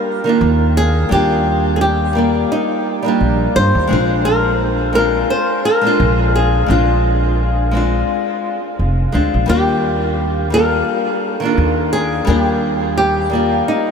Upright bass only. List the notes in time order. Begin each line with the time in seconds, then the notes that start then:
0.41 D#2
1.11 D#2
3.21 A#1
3.56 G2
3.75 D#2
3.91 A#1
6.00 A#1
6.70 A#1
8.79 F1
9.14 D2
9.34 A#1
9.49 D#2
11.58 D#2
12.28 D#2